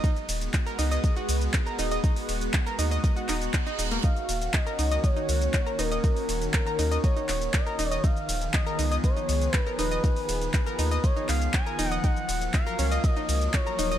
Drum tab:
RD |x-x-x-x-x-x-x-x-|x-x-x-x-x-x-x-x-|x-x-x-x-x-x-x-x-|x-x-x-x-x-x-x-x-|
HH |xxoxxxoxxxoxxxox|xooxxxoxxxoxxxox|xxoxxxoxxxoxxxox|xooxxxoxxxoxxxox|
SH |xxxxxxxxxxxxxxxx|xxxxxxxxxxxxxxxx|xxxxxxxxxxxxxxxx|xxxxxxxxxxxxxxxx|
CP |----x-------x---|----x-----x-x---|----x-------x---|----x-----x-x---|
BD |o---o---o---o---|o---o---o---o---|o---o---o---o---|o---o---o---o---|

RD |x-x-x-x-x-x-x-x-|x-x-x-x-x-x-x-x-|x-x-x-x-x-x-x-x-|
HH |xxoxxxoxxxoxxxox|xooxxxoxxxoxxxox|xxoxxxoxxxoxxxox|
SH |xxxxxxxxxxxxxxxx|xxxxxxxxxxxxxxxx|xxxxxxxxxxxxxxxx|
CP |----x-------x---|----x-----x-x---|----x-------x---|
BD |o---o---o---o---|o---o---o---o---|o---o---o---o---|